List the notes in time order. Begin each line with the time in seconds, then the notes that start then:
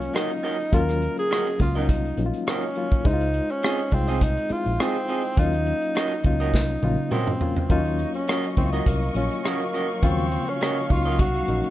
Already playing: F#3 A#3 C#4 F4 F5
0.01 closed hi-hat
0.14 C#4 D#4 F#4 A#4 D#5, cross-stick, closed hi-hat
0.30 closed hi-hat
0.43 C#4 F#4 A#4 D#5, closed hi-hat
0.60 closed hi-hat
0.72 D#2 F#3 A#3 C#4 F4 A#4, kick, closed hi-hat
0.89 cross-stick, closed hi-hat
1.02 closed hi-hat
1.17 G#4, closed hi-hat
1.31 C#4 F#4 A#4 D#5, cross-stick, closed hi-hat
1.47 closed hi-hat
1.59 C#2 F#3 A#3 C#4 F4, kick, closed hi-hat
1.75 C#4 D#4 F#4 A#4 D#5, closed hi-hat
1.89 C2, kick, closed hi-hat
2.05 closed hi-hat
2.17 A#1 F#3 A#3 C#4 D#4, closed hi-hat
2.26 F4
2.34 closed hi-hat
2.47 C#4 F#4 A#4 D#5, cross-stick, closed hi-hat
2.62 closed hi-hat
2.75 F#3 A#3 C#4 F4, closed hi-hat
2.92 kick, closed hi-hat
3.05 C#2 G#3 D#4 E4 C5, kick, closed hi-hat
3.13 F4
3.21 closed hi-hat
3.34 closed hi-hat
3.49 C#4, closed hi-hat
3.63 C4 F4 G#4 D#5, cross-stick, closed hi-hat
3.79 closed hi-hat
3.91 C2 G#3 C4 D#4 F4, kick, closed hi-hat
4.08 C4 F4 G#4 D#5, closed hi-hat
4.21 D#4, kick, closed hi-hat
4.37 closed hi-hat
4.49 G#3 C4 D#4 E4 F4, muted fingered electric bass stroke, closed hi-hat
4.58 F4
4.66 A#1, closed hi-hat
4.79 C4 F4 G#4 D#5, cross-stick, closed hi-hat
4.94 closed hi-hat
5.08 C4 F4 G#4 D#5, closed hi-hat
5.25 closed hi-hat
5.37 D#2 F#3 A#3 C#4 D#4 F4, kick, closed hi-hat
5.53 closed hi-hat
5.66 closed hi-hat
5.82 closed hi-hat
5.95 C#4 F#4 A#4 D#5, cross-stick, closed hi-hat
6.12 closed hi-hat
6.23 C#2 F#3 A#3 C#4 D#4 F4, kick, closed hi-hat
6.40 C#4 F#4 A#4 D#5, closed hi-hat
6.54 C2, kick, snare
6.82 A#1 F#3 A#3 C#4 F4, high tom
7.11 C4 C#4 F#4 A#4 D#5, mid tom
7.27 mid tom
7.40 F#3 A#3 C#4 F4, floor tom
7.57 floor tom
7.69 D#2 F#3 A#3 C#4 D#4 F4 D#5 C#6, kick, closed hi-hat
7.86 closed hi-hat
7.99 closed hi-hat
8.14 C#4, closed hi-hat
8.28 C#4 F#4 A#4 D#5, cross-stick, closed hi-hat
8.44 closed hi-hat
8.56 C#2 F#3 A#3 C4 C#4 E4, kick, closed hi-hat
8.65 F4
8.73 C#4 F#4 A#4 D#5, closed hi-hat
8.86 C2 A#3, kick, closed hi-hat
9.02 closed hi-hat
9.15 A#1 F#3 A#3 C#4 F4, closed hi-hat
9.31 closed hi-hat
9.44 A#3 C#4 F#4 A#4 D#5, cross-stick, closed hi-hat
9.60 closed hi-hat
9.73 C#4 F#4 A#4 D#5, closed hi-hat
9.90 closed hi-hat
10.02 D#2 C#3 F3 A#3 C4 F4 F5, kick, closed hi-hat
10.09 F#3
10.19 closed hi-hat
10.32 closed hi-hat
10.47 C#4, closed hi-hat
10.61 C#4 F#4 A#4 D#5, cross-stick, closed hi-hat
10.77 closed hi-hat
10.89 C#2 F#3 A#3 C#4 D#4 F4, kick, closed hi-hat
11.05 C#4 F#4 A#4 D#5, closed hi-hat
11.19 C2 F#4, kick, closed hi-hat
11.36 closed hi-hat
11.47 A#1 F#3 A#3 C#4 D#4, closed hi-hat
11.64 closed hi-hat